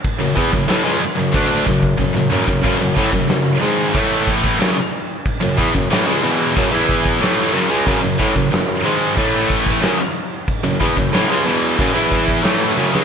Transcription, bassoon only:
\new Staff \with { instrumentName = "Bassoon" } { \clef bass \time 4/4 \key fis \minor \tempo 4 = 92 r16 fis,16 e,16 fis,16 a,16 cis,16 fis,16 fis,16 d,8 fis,8 fis,16 fis,16 fis,16 fis,16 | fis,16 fis,16 a,16 fis,16 fis,8 gis,8 a,8 r8 fis,16 r8. | r16 fis,16 e,16 fis,16 a,16 cis,16 e,8 fis,16 e,8. a,8 fis,16 cis,16 | fis,16 fis,16 a,16 fis,16 fis,8 gis,8 a,8 r8 fis,16 r8. |
r16 fis,16 e,16 fis,16 a,16 cis,16 e,8 fis,16 e,8. a,8 fis,16 cis,16 | }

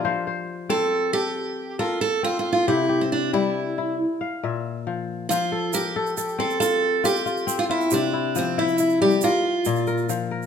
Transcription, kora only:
<<
  \new Staff \with { instrumentName = "Kora" } { \time 12/8 \key f \major \tempo 4. = 92 << { c''8 c''4 a'4. r4 bes'4. r8 | g'8 g'4 e'4. r8 f''8 e''4. r8 | r8 a'8 bes'4 a'4 f'4. f'4 f'8~ | f'8 e'8 f4 e'4 bes'4. bes'4 bes'8 | } \\ { f'16 r1 r4. r16 | r1. | r1. | r1. | } >> }
  \new Staff \with { instrumentName = "Kora" } { \time 12/8 \key f \major f4 r8 c'4 a'4 r8 a'4 c'4 | c4 r8 g4 e'8 r4 bes,4 f4 | f4 r8 a'4 c'4 r8 f'4 c'4 | c4 r8 e'4 g8 r4 bes,4 f4 | }
>>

